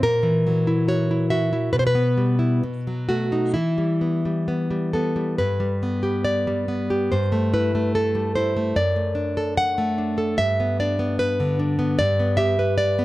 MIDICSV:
0, 0, Header, 1, 2, 480
1, 0, Start_track
1, 0, Key_signature, 1, "minor"
1, 0, Tempo, 845070
1, 26, Time_signature, 2, 2, 24, 8
1, 987, Tempo, 887574
1, 1467, Tempo, 930233
1, 2907, Tempo, 864553
1, 2908, Key_signature, 1, "major"
1, 3867, Tempo, 808625
1, 7371, End_track
2, 0, Start_track
2, 0, Title_t, "Nylon-string guitar"
2, 0, Program_c, 0, 24
2, 17, Note_on_c, 0, 46, 63
2, 18, Note_on_c, 0, 70, 99
2, 130, Note_on_c, 0, 52, 54
2, 265, Note_on_c, 0, 54, 53
2, 382, Note_on_c, 0, 64, 51
2, 480, Note_off_c, 0, 70, 0
2, 501, Note_on_c, 0, 66, 54
2, 503, Note_on_c, 0, 73, 84
2, 622, Note_off_c, 0, 64, 0
2, 629, Note_on_c, 0, 64, 51
2, 734, Note_off_c, 0, 73, 0
2, 738, Note_off_c, 0, 66, 0
2, 740, Note_on_c, 0, 76, 81
2, 745, Note_on_c, 0, 66, 52
2, 859, Note_off_c, 0, 52, 0
2, 861, Note_off_c, 0, 64, 0
2, 867, Note_on_c, 0, 64, 54
2, 960, Note_off_c, 0, 46, 0
2, 975, Note_off_c, 0, 76, 0
2, 981, Note_on_c, 0, 71, 83
2, 987, Note_off_c, 0, 66, 0
2, 987, Note_on_c, 0, 47, 60
2, 988, Note_off_c, 0, 54, 0
2, 988, Note_off_c, 0, 64, 0
2, 1014, Note_off_c, 0, 71, 0
2, 1017, Note_on_c, 0, 72, 74
2, 1055, Note_off_c, 0, 72, 0
2, 1057, Note_on_c, 0, 71, 86
2, 1102, Note_on_c, 0, 59, 49
2, 1223, Note_on_c, 0, 55, 47
2, 1339, Note_on_c, 0, 64, 42
2, 1453, Note_off_c, 0, 47, 0
2, 1465, Note_off_c, 0, 64, 0
2, 1466, Note_off_c, 0, 59, 0
2, 1468, Note_off_c, 0, 55, 0
2, 1472, Note_on_c, 0, 47, 60
2, 1594, Note_on_c, 0, 54, 46
2, 1683, Note_off_c, 0, 71, 0
2, 1705, Note_on_c, 0, 66, 68
2, 1709, Note_on_c, 0, 57, 40
2, 1826, Note_on_c, 0, 63, 47
2, 1936, Note_off_c, 0, 66, 0
2, 1937, Note_off_c, 0, 47, 0
2, 1938, Note_on_c, 0, 64, 67
2, 1944, Note_off_c, 0, 54, 0
2, 1946, Note_on_c, 0, 52, 51
2, 1948, Note_off_c, 0, 63, 0
2, 1950, Note_off_c, 0, 57, 0
2, 2062, Note_on_c, 0, 55, 39
2, 2183, Note_on_c, 0, 59, 39
2, 2301, Note_off_c, 0, 55, 0
2, 2307, Note_on_c, 0, 55, 36
2, 2417, Note_off_c, 0, 59, 0
2, 2424, Note_on_c, 0, 59, 40
2, 2534, Note_off_c, 0, 55, 0
2, 2540, Note_on_c, 0, 55, 38
2, 2649, Note_off_c, 0, 64, 0
2, 2658, Note_on_c, 0, 69, 54
2, 2659, Note_off_c, 0, 59, 0
2, 2665, Note_on_c, 0, 59, 39
2, 2768, Note_off_c, 0, 55, 0
2, 2774, Note_on_c, 0, 55, 42
2, 2886, Note_off_c, 0, 52, 0
2, 2889, Note_off_c, 0, 69, 0
2, 2891, Note_on_c, 0, 71, 69
2, 2896, Note_on_c, 0, 43, 58
2, 2898, Note_off_c, 0, 55, 0
2, 2902, Note_off_c, 0, 59, 0
2, 3009, Note_on_c, 0, 55, 49
2, 3135, Note_on_c, 0, 59, 46
2, 3247, Note_on_c, 0, 67, 42
2, 3358, Note_off_c, 0, 71, 0
2, 3367, Note_on_c, 0, 74, 75
2, 3487, Note_off_c, 0, 55, 0
2, 3494, Note_on_c, 0, 55, 46
2, 3604, Note_off_c, 0, 59, 0
2, 3610, Note_on_c, 0, 59, 48
2, 3726, Note_off_c, 0, 67, 0
2, 3733, Note_on_c, 0, 67, 50
2, 3838, Note_off_c, 0, 74, 0
2, 3839, Note_off_c, 0, 43, 0
2, 3851, Note_on_c, 0, 72, 76
2, 3855, Note_on_c, 0, 43, 59
2, 3858, Note_off_c, 0, 59, 0
2, 3859, Note_off_c, 0, 67, 0
2, 3860, Note_off_c, 0, 55, 0
2, 3972, Note_on_c, 0, 57, 45
2, 4098, Note_off_c, 0, 72, 0
2, 4099, Note_on_c, 0, 64, 50
2, 4099, Note_on_c, 0, 71, 67
2, 4218, Note_off_c, 0, 57, 0
2, 4226, Note_on_c, 0, 57, 43
2, 4340, Note_off_c, 0, 71, 0
2, 4345, Note_on_c, 0, 69, 75
2, 4463, Note_on_c, 0, 55, 46
2, 4582, Note_off_c, 0, 69, 0
2, 4584, Note_off_c, 0, 64, 0
2, 4585, Note_on_c, 0, 72, 67
2, 4591, Note_on_c, 0, 64, 51
2, 4703, Note_off_c, 0, 57, 0
2, 4710, Note_on_c, 0, 57, 53
2, 4808, Note_off_c, 0, 43, 0
2, 4822, Note_off_c, 0, 72, 0
2, 4826, Note_on_c, 0, 42, 64
2, 4828, Note_on_c, 0, 74, 81
2, 4830, Note_off_c, 0, 55, 0
2, 4834, Note_off_c, 0, 57, 0
2, 4835, Note_off_c, 0, 64, 0
2, 4945, Note_on_c, 0, 57, 44
2, 5057, Note_on_c, 0, 62, 55
2, 5188, Note_on_c, 0, 69, 54
2, 5296, Note_off_c, 0, 74, 0
2, 5307, Note_off_c, 0, 69, 0
2, 5309, Note_on_c, 0, 78, 87
2, 5424, Note_off_c, 0, 57, 0
2, 5431, Note_on_c, 0, 57, 45
2, 5543, Note_off_c, 0, 62, 0
2, 5550, Note_on_c, 0, 62, 47
2, 5667, Note_on_c, 0, 69, 59
2, 5767, Note_off_c, 0, 42, 0
2, 5772, Note_off_c, 0, 78, 0
2, 5787, Note_on_c, 0, 43, 73
2, 5787, Note_on_c, 0, 76, 98
2, 5791, Note_off_c, 0, 69, 0
2, 5792, Note_off_c, 0, 57, 0
2, 5792, Note_off_c, 0, 62, 0
2, 5917, Note_on_c, 0, 59, 49
2, 6019, Note_off_c, 0, 76, 0
2, 6036, Note_on_c, 0, 74, 73
2, 6038, Note_on_c, 0, 62, 56
2, 6143, Note_off_c, 0, 59, 0
2, 6150, Note_on_c, 0, 59, 51
2, 6266, Note_off_c, 0, 74, 0
2, 6269, Note_on_c, 0, 71, 76
2, 6393, Note_on_c, 0, 50, 58
2, 6501, Note_off_c, 0, 62, 0
2, 6502, Note_off_c, 0, 71, 0
2, 6508, Note_on_c, 0, 62, 55
2, 6616, Note_off_c, 0, 59, 0
2, 6623, Note_on_c, 0, 59, 62
2, 6723, Note_off_c, 0, 43, 0
2, 6741, Note_on_c, 0, 74, 102
2, 6746, Note_off_c, 0, 59, 0
2, 6748, Note_off_c, 0, 62, 0
2, 6748, Note_on_c, 0, 43, 78
2, 6750, Note_off_c, 0, 50, 0
2, 6865, Note_on_c, 0, 59, 52
2, 6968, Note_on_c, 0, 76, 83
2, 6973, Note_off_c, 0, 74, 0
2, 6974, Note_on_c, 0, 67, 58
2, 7097, Note_off_c, 0, 59, 0
2, 7099, Note_on_c, 0, 71, 50
2, 7207, Note_off_c, 0, 76, 0
2, 7210, Note_on_c, 0, 74, 91
2, 7335, Note_on_c, 0, 59, 53
2, 7371, Note_off_c, 0, 43, 0
2, 7371, Note_off_c, 0, 59, 0
2, 7371, Note_off_c, 0, 67, 0
2, 7371, Note_off_c, 0, 71, 0
2, 7371, Note_off_c, 0, 74, 0
2, 7371, End_track
0, 0, End_of_file